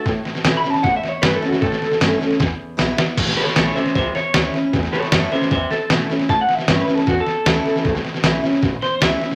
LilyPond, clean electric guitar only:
\new Staff \with { instrumentName = "Clean electric guitar" } { \time 4/4 \key a \mixolydian \tempo 4 = 154 r4 \tuplet 3/2 { r8 b''8 a''8 fis''8 e''8 cis''8 b'8 a'8 fis'8 } | a'2 r2 | r8 <a' cis''>8 <a' cis''>8 <c'' e''>8 <c'' e''>8 cis''4 r8 | r8 <a' cis''>8 <a' cis''>8 <c'' e''>8 <c'' e''>8 a'4 r8 |
\tuplet 3/2 { a''8 fis''8 e''8 cis''8 b'8 a'8 fis'8 a'4~ } a'4~ | a'8 r2 c''8 e''4 | }